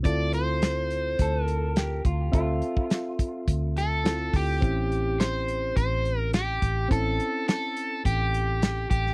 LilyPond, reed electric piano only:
\new Staff \with { instrumentName = "Reed electric piano" } { \time 4/4 \key d \minor \tempo 4 = 105 <c' e' f' a'>1 | <c' f' a' e''>2. <c' e' f' a'>4 | <bis cis' e' g'>1 | <bis cis' e' a'>1 | }